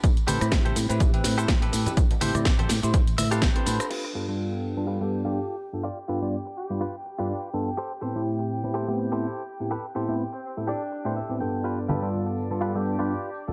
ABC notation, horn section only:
X:1
M:4/4
L:1/16
Q:"Swing 16ths" 1/4=124
K:Gmix
V:1 name="Horn section"
z16 | z16 | z8 z G6 z | z6 G2 z3 D D z3 |
z8 z G3 E E z2 | z4 z C C z D4 z4 | z8 z G6 z |]